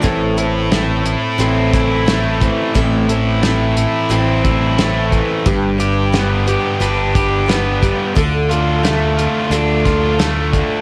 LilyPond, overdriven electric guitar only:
\new Staff \with { instrumentName = "Overdriven electric guitar" } { \time 4/4 \key a \minor \tempo 4 = 89 a,8 e'8 a8 e'8 c'8 e'8 a8 e8 | a,8 e'8 a8 e'8 c'8 e'8 a8 e8 | g,8 g'8 b8 g'8 d'8 g'8 b8 g8 | d8 f'8 a8 f'8 d'8 f'8 a8 d8 | }